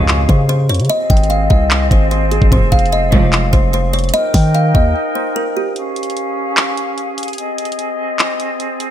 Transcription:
Already playing: G#1 C#2 F2 C#3 C#4 G#4 F5
0.08 clap, closed hi-hat
0.29 C#3 C5, kick, closed hi-hat
0.49 C5, closed hi-hat
0.69 F2 C#5, closed hi-hat
0.74 closed hi-hat
0.79 C#3, closed hi-hat
0.85 closed hi-hat
0.90 C4 G#4 D#5, closed hi-hat
1.10 G#1 G5, kick, closed hi-hat, open hi-hat
1.17 closed hi-hat
1.23 closed hi-hat
1.30 F5, closed hi-hat
1.50 C2 D#5, kick
1.71 clap, closed hi-hat
1.91 G#1 C5, kick, closed hi-hat
2.11 C5, closed hi-hat
2.31 G#4, closed hi-hat
2.42 G#1, kick
2.52 F1 G#1 F2 C3 C5 F5, kick, closed hi-hat
2.72 F1 F5, kick, closed hi-hat
2.79 closed hi-hat
2.86 closed hi-hat
2.92 D#5, closed hi-hat
3.12 F1 C2 G#2 F3 C#5, kick
3.33 clap, closed hi-hat
3.53 F1 C5, kick, closed hi-hat
3.73 C5, closed hi-hat
3.93 C#5, closed hi-hat
3.99 closed hi-hat
4.04 closed hi-hat
4.09 closed hi-hat
4.14 D#4 A#4 D#5 G5, closed hi-hat
4.34 D#3 G5, kick, open hi-hat
4.54 F5, closed hi-hat
4.75 D#2 D#5, kick
5.15 C5
5.36 A#4
5.57 G4
5.76 C#4 G#4 F5, closed hi-hat
5.96 closed hi-hat
6.03 closed hi-hat
6.10 closed hi-hat
6.17 closed hi-hat
6.57 clap, closed hi-hat
6.77 closed hi-hat
6.98 closed hi-hat
7.18 closed hi-hat
7.23 closed hi-hat
7.28 closed hi-hat
7.33 closed hi-hat
7.38 C4 D#5, closed hi-hat
7.58 closed hi-hat, open hi-hat
7.65 closed hi-hat
7.72 closed hi-hat
7.79 closed hi-hat
8.19 clap, closed hi-hat
8.40 closed hi-hat
8.60 closed hi-hat
8.80 closed hi-hat

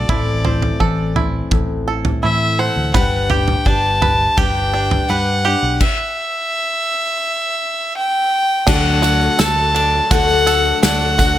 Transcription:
Already playing: D5
0.09 A1 A2 E3 C4 E4 A4, kick, floor tom
0.45 E4 C5, floor tom
0.62 floor tom
0.80 A1 E3 A4, kick
1.16 C4 E4, floor tom
1.51 A1 A2, kick, floor tom
1.88 E4 A4
2.05 floor tom
2.23 A2 E3 E4 E5
2.59 A4 C5 F#5
2.76 D2
2.94 G1 G3 D4 G4 B4 F#5, kick, floor tom
3.29 D4 G4 B4 G5, floor tom
3.48 floor tom
3.65 G1 G3 D4 G4 B4 A5, kick
4.02 B4, floor tom
4.37 G1 G3 D4 G4 B4 G5, kick, floor tom
4.74 D4
4.91 floor tom
5.09 G2 G3 D4 G4 B4 F#5
5.44 D4 G4 B4
5.63 B1
5.80 E5, kick, crash
7.97 G5
8.67 D2 D3 F#3 A3 D4 F#4 A4 D5 F#5, kick, crash, tambourine
8.85 tambourine
9.02 F#4, ride, tambourine
9.21 tambourine
9.39 D2 A3 D4 F#4 A4 A5, snare, ride, tambourine
9.75 D4, ride
10.11 D2 D3 A3 D4 F#4 A4 F#5, kick, ride
10.29 tambourine
10.47 A4, ride, tambourine
10.65 tambourine
10.83 D2 A3 D4 F#4 A4 F#5, snare, ride, tambourine
11.01 tambourine
11.18 D4 F#4 A4, kick, ride, tambourine

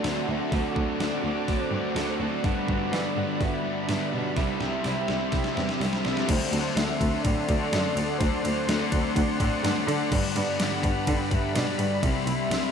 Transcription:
Already playing: F#3 C4 F#4 A4 D5 F#5 C6
0.03 D2 D3 F#3 A3 C4 D4 F#4, snare, open hi-hat
0.27 D2 D3 F#3 A3 C4 D4 F#4 E5
0.51 D2 D3 F#3 A3 C4 D4 F#4 F#5 D6, kick, open hi-hat
0.75 D2 D3 F#3 A3 D4 F#4, kick
0.99 D2 D3 F#3 A3 C4 D4 F#4 D5, snare, open hi-hat
1.23 D2 D3 F#3 A3 C4 D4 F#4
1.47 D2 D3 F#3 A3 C4 D4 C5, kick, open hi-hat
1.71 G2 D3 F#3 A3 D4
1.95 D2 D3 F#3 A3 C4 D4 F#4, snare, open hi-hat
2.19 D2 D3 F#3 A3 C4 D4 F#4 D5
2.43 G2 D3 G3 B3 D4 D5 F#5 B5, kick, open hi-hat
2.67 G2 D3 G3 B3 D4 F#4, kick
2.91 G2 D3 E3 G3 B3 D4 D5, snare, open hi-hat
3.15 G2 D3 G3 B3 D4 F#4
3.40 G2 D3 G3 B3 D4 E5, kick, open hi-hat
3.63 G2 D3 G3 B3 D4
3.88 G2 D3 G3 B3 D4, snare, open hi-hat
3.92 G3
4.12 G2 B2 D3 F#3 G3 B3 D4 D5
4.36 C2 C3 G3 C4 E4 G4 C5 E5, kick, snare, open hi-hat
4.60 C2 C3 G3 C4 E4 G4, snare
4.84 C2 C3 G3 C4 E4, snare, open hi-hat
4.88 C4
5.08 C2 C3 G3 C4 E4 G4, snare
5.32 C2 C3 G3 C4 E4, kick, snare, open hi-hat
5.44 snare
5.57 E2 C3 G3 C4 E4, snare
5.61 G3
5.69 snare
5.80 C2 C3 G3 C4 E4, snare, open hi-hat
5.93 snare
6.04 C2 C3 G3 B3 C4 E4, snare
6.17 snare
6.27 D2 D3 F#3 A3 D4 A4 C5 D5 F#5 C6, kick, crash, ride
6.51 D2 A3 C4 D4, ride
6.76 D2 D3 A3 C4 D4 E5, snare, ride
6.89 snare
6.99 D2 D4 E5, kick, ride
7.23 A2 F#3 D5, kick, ride
7.48 D2 A3 D4, kick, ride
7.71 F#2 D3 A3 D4 A4, snare, ride
7.96 D2 A3 D4, ride
8.18 D2 D3 F#3 A3 C5, kick, ride
8.22 D4
8.43 D2 A3 C4 D4, ride
8.67 D2 D3 A3 C4 D4, snare, ride
8.92 D2 D4, kick, ride
9.16 D2 F#3, kick, ride
9.39 A2 A3 D4, kick, ride
9.63 G2 D3 A3 D4 A4, snare, ride
9.76 snare
9.87 D3 A3 D4, ride
10.11 G2 D3 G3 D5 B5, kick, crash
10.36 G2 D3 G3 B3, ride
10.59 G2 D3 G3 B3 F#5, snare, ride
10.72 snare
10.83 G2 D4, kick, ride
11.07 D3 G5, kick, ride
11.31 G2 D3 G3 D4 E5, kick, ride
11.55 G2 B2 D3 F#4 D5, snare, ride
11.59 G3
11.67 snare
11.78 G2 G3 D4, ride
11.83 D3
12.03 C2 C3 G3 C4 E5 C6, kick, ride
12.26 C2 C4, ride
12.30 G3
12.50 C2 C3 G3, snare, ride
12.54 C4

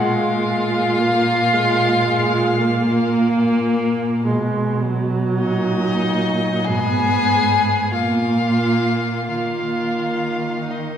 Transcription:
Already playing: A#2 G#3 F4 F5
0.99 A#3
1.53 G#3
2.06 G#3
2.59 A#3
4.26 B2 G#3
4.82 F#3
5.38 A#2 D#4 D#5
6.65 G#2 B3 G#4 G#5
7.92 A#2 A#3 F4 F5
9.27 D#3 A#3 F4 F5
10.67 A#3 D#4 D#5

